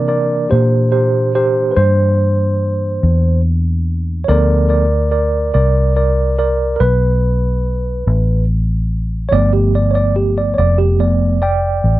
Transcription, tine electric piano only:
Already playing: E3 A#3 D4
0.08 A#4 D5
0.50 G4 C5
0.92 G4 C5
1.35 G4 C5
1.71 B4
1.76 C5
4.24 F3 A4 C#5
4.28 B3 A#4 D5
4.69 A#4 D5
5.11 A#4 D5
5.54 A#4 D5
5.96 A#4 D5
6.39 A#4 D5
6.76 A#4
6.80 B4
9.29 F3 A3 B3 C#5 D5
9.53 G4
9.75 D5
9.91 C#5
9.95 D5
10.16 G4
10.38 D5
10.54 C#5
10.58 D5
10.78 G4
10.99 F3 A3 B3 D5
11.42 D5 G5

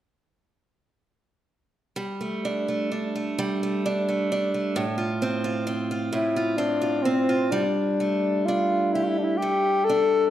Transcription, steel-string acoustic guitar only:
1.96 G3
2.21 A3
2.45 D4
2.68 A3
2.92 D4
3.15 A3
3.39 G3
3.63 A3
3.86 D4
4.09 A3
4.32 D4
4.54 A3
4.76 A2
4.98 F4
5.22 C4
5.44 F4
5.67 C4
5.91 F4
6.13 A2
6.36 F4
6.58 C4
6.82 F4
7.05 C4
7.29 F4
7.52 G3
8.00 A3
8.48 D4
8.95 G4
9.42 A3
9.90 D4

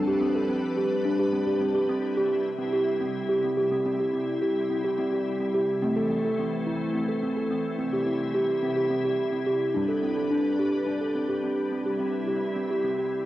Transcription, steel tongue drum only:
Already playing: G3
0.07 G4
0.21 C4
0.35 A4
0.49 C4
0.77 G4
1.05 D4
1.19 G4
1.33 C4
1.47 G4
1.61 C4
1.75 G4
1.89 C4
2.17 G4
2.59 C4
2.73 G4
3.01 C4
3.29 G4
3.44 C4
3.57 G4
3.71 C4
3.85 C4
4.00 G4
4.14 C4
4.42 G4
4.70 C4
4.85 G4
4.98 C4
5.13 G4
5.40 C4
5.54 G4
5.82 A3 C4
5.96 A4
6.10 C4
6.25 A4
6.39 C4
6.67 E4
6.95 C4
7.09 A4
7.23 C4
7.37 A4
7.51 C4
7.79 C4
7.93 G4
8.07 C4
8.34 G4
8.62 C4
8.76 G4
8.90 C4
9.04 G4
9.32 C4
9.46 G4
9.74 G3 D4
9.89 A4
10.03 C4
10.17 A4
10.31 D4
10.59 G4
10.87 D4
11.01 A4
11.15 C4
11.29 G4
11.44 C4
11.72 C4
11.86 G4
12.00 C4
12.28 G4
12.56 C4
12.70 G4
12.84 C4
12.98 G4

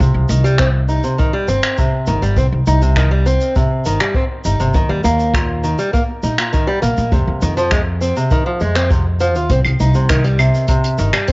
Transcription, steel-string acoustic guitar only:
0.00 C3
0.29 D#3
0.44 G3
0.59 C4
0.88 D#4
1.04 C3
1.18 D#3
1.33 G3
1.48 C4
1.78 C3
2.07 D#3
2.22 G3
2.37 C4
2.67 D#4
2.82 C3
2.97 D#3
3.11 G3
3.26 C4
3.56 C3
3.86 D#3
4.01 G3
4.15 C4
4.45 D#4
4.60 C3
4.75 D#3
4.89 G3
5.04 A#3
5.34 A#2
5.64 D#3
5.79 G3
5.93 A#3
6.24 D#4
6.38 A#2
6.53 D#3
6.67 G3
6.82 A#3
7.12 C3
7.42 D#3
7.57 F3
7.72 G#3
8.01 C4
8.16 C3
8.31 D#3
8.46 F3
8.61 G#3
8.76 C4
8.90 C3
9.20 F3
9.36 F4
9.51 C4
9.80 D#4
9.95 C3
10.09 D#3
10.24 G3
10.39 C3
10.69 C3
10.98 D#3
11.13 G3
11.28 C4

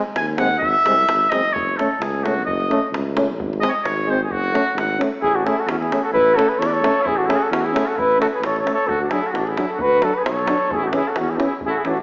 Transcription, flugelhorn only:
5.22 G#4
5.35 F#4
5.45 G#4
5.58 A4
5.69 F#4
5.79 G#4
6.04 A4
6.13 B4
6.36 A4
6.49 B4
6.59 C#5
6.67 D5
6.73 C#5
7.07 G#4
7.18 F#4
7.30 G#4
7.43 A4
7.53 F#4
7.66 G#4
7.89 A4
7.99 B4
8.21 A4
8.34 B4
8.45 C#5
8.59 C#5
8.74 C#5
8.87 A4
9.01 F#4
9.10 G#4
9.22 A4
9.32 F#4
9.45 G#4
9.68 A4
9.81 B4
10.04 A4
10.14 B4
10.25 C#5
10.71 G#4
10.84 F#4
10.95 G#4
11.07 A4
11.17 F#4
11.30 G#4
11.35 F#4
11.42 G#4
11.66 G#4 A4
11.78 G#4
11.84 G#4
11.89 F#4

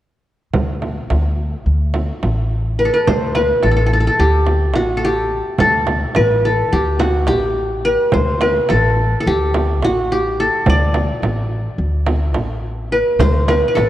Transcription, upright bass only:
0.54 D2
1.10 D2
1.66 D2
2.23 A1
3.07 D2
3.64 A1
4.19 D2
4.74 A1
5.60 D2
6.17 A1
6.73 D2
7.30 A1
8.15 D2
8.71 A1
9.27 D2
9.82 A1
10.67 D2
11.22 A1
11.78 D2
12.36 A1
13.19 D2
13.77 A1

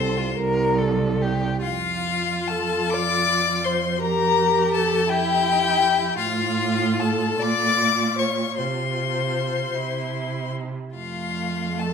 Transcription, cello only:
Already playing: C2
0.37 C2
1.61 F2
6.18 A2
7.42 A#2
8.58 C3
9.75 C3
10.97 F2

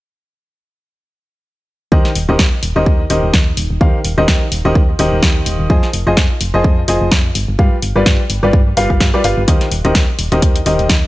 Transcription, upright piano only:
1.92 D#3 G4 A#4 C5 D#5
2.29 D#3 G4 A#4 C5 D#5
2.76 D#3 G4 A#4 C5 D#5
3.10 D#3 G4 A#4 C5 D#5
3.81 D#3 G4 A#4 C5 F5
4.18 D#3 G4 A#4 C5 D#5
4.65 D#3 G4 A#4 C5 D#5
4.99 D#3 G4 A#4 C5 D#5
5.70 F3 F4 G#4 C5 D#5
6.07 F3 F4 G#4 C5 D#5
6.54 F3 F4 G#4 C5 D#5
6.88 F3 F4 G#4 C5 D#5
7.59 G3 F4 G4 B4 F5
7.96 G3 F4 G4 B4 D5
8.43 G3 F4 G4 B4 D5
8.77 G3 F4 G4 B4 F5
8.90 G3 F4 G4 B4 F5
9.14 G3 F4 G4 B4 D5
9.24 F4 G4 B4 F5
9.48 D#3 G4 A#4 C5 D#5
9.85 D#3 G4 A#4 C5 D#5
10.32 D#3 G4 A#4 C5 D#5
10.66 D#3 G4 A#4 C5 D#5

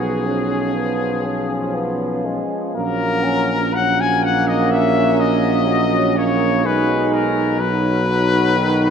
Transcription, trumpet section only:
Already playing: G#4
2.75 A#4
3.74 F#5
3.99 G#5
4.24 F#5
4.47 D#5
4.70 E5
5.19 D#5
6.17 C#5
6.64 B4
7.12 A#4
7.60 B4

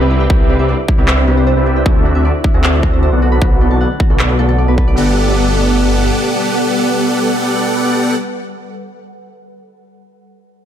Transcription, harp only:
Already playing: G4 B4 D5
0.10 E4
0.20 G5
0.30 E4
0.49 G4
0.59 E5
0.69 D5
0.88 E4
0.98 G4
1.08 C5
1.27 G4
1.37 C5
1.47 C5
1.66 E4
1.76 G5
1.86 E4
2.05 F#4
2.15 E5
2.25 D5
2.44 E4
2.54 F#4
2.64 C5
2.83 F#4
2.93 C5
3.03 C5
3.22 F#4
3.32 B5
3.42 F#4
3.61 A4
3.71 A5
3.81 F#5
4.00 F#4
4.10 A4
4.19 D5
4.39 A4
4.49 A4
4.58 D5
4.68 B4
4.88 D5
4.97 F#4

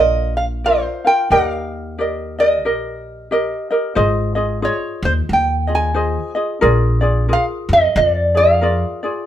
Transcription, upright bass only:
Already playing: A#1
1.31 D#2
2.64 A#1
3.96 G#1
5.03 D#2
5.29 D#2
6.62 A#1
7.69 F2
7.96 F2

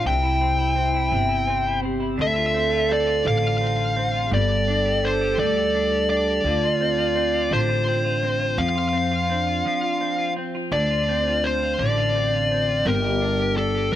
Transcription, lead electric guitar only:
0.07 G5
2.22 E5
2.93 D5
3.28 F5
4.34 D5
5.05 C5
5.39 D5
6.10 D5
7.53 C5
8.58 F5
10.72 D5
11.44 C5
11.79 D5
12.87 A#4
13.57 A4

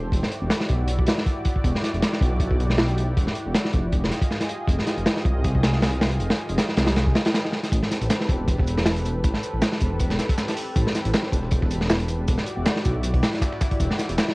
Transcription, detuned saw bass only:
Already playing: E1
0.12 E1
0.42 E1
0.70 B1
1.64 E1
1.94 E1
2.21 B1
2.59 B1
3.17 E1
3.46 E1
3.74 F1
4.68 F1
4.98 F1
5.25 C2
5.63 C2
6.20 F1
6.50 F1
6.77 C2
7.72 A1
8.01 A1
8.29 E1
8.67 E1
9.24 A1
9.53 A1
9.81 E1
10.76 A1
11.05 A1
11.33 E1
11.71 E1
12.28 E1
12.57 E1
12.86 B1
13.80 E1
14.09 E1

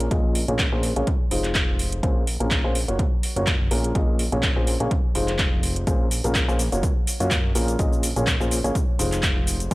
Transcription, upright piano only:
0.11 A#2 A#3 C#4 G#4 D#5
0.48 A#2 A#3 C#4 G#4 C#5
0.72 A#2 A#3 C#4 G#4 C5
0.96 A#3 C#4 G#4 C#5
1.31 G#3 D#4 F4 C5
2.03 A#2 A#3 C#4 G#4 C5
2.40 A#2 A#3 C#4 G#4 A#4
2.64 A#3 C#4 G#4 C5
2.88 A#3 F4 F#4 C#5
3.36 A#3 F4 F#4 C#5
3.71 A#2 A#3 C#4 G#4 A#4
3.95 A#2 A#3 C#4 G#4 D#5
4.32 A#2 A#3 C#4 G#4 C#5
4.56 A#2 A#3 C#4 G#4 C5
4.80 A#3 C#4 G#4 C#5
5.15 G#3 D#4 F4 C5
5.87 A#2 A#3 C#4 G#4 C5
6.24 A#2 A#3 C#4 G#4 A#4
6.48 A#3 C#4 G#4 C5
6.72 A#3 F4 F#4 C#5
7.20 A#3 F4 F#4 C#5
7.55 A#2 A#3 C#4 G#4 A#4
7.79 A#2 A#3 C#4 G#4 D#5
8.16 A#2 A#3 C#4 G#4 C#5
8.40 A#2 A#3 C#4 G#4 C5
8.64 A#3 C#4 G#4 C#5
8.99 G#3 D#4 F4 C5
9.71 A#3 C#4 C5

